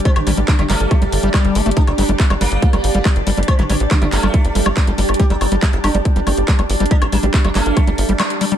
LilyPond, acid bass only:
\new Staff \with { instrumentName = "Acid bass" } { \clef bass \time 4/4 \key c \dorian \tempo 4 = 140 g16 r16 g16 g16 r16 g16 g16 r16 g16 g16 r16 g16 g8 a16 a16 | g16 r16 g16 g16 r16 g16 g16 r16 g16 g16 r16 g16 g16 r16 g16 g16 | r16 g16 g16 r16 g16 g16 r16 g16 g16 r16 g16 g16 r16 g16 g16 r16 | g16 g16 r16 g16 g16 r16 g16 g16 r16 g16 g16 r16 g16 g16 r16 g16 |
g16 r16 g16 g16 r16 g16 g16 r16 g16 g16 r16 g16 g16 r16 g16 g16 | }